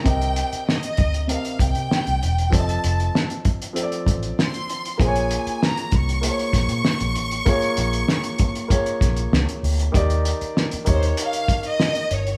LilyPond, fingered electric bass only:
\new Staff \with { instrumentName = "Fingered electric bass" } { \clef bass \time 4/4 \key bes \mixolydian \tempo 4 = 97 c,8. r8. d,8. r16 c,16 c16 r16 c,16 fes,,8 | f,,8 f,,8 r4. a,,8 r4 | bes,,8. r8. c,8. r16 bes,,16 bes,16 r16 bes,,16 a,,8 | r8 bes,,8 r4. bes,,8 des,16 r16 d,8 |
ees,8. r8. ees,8 r4. g,,8 | }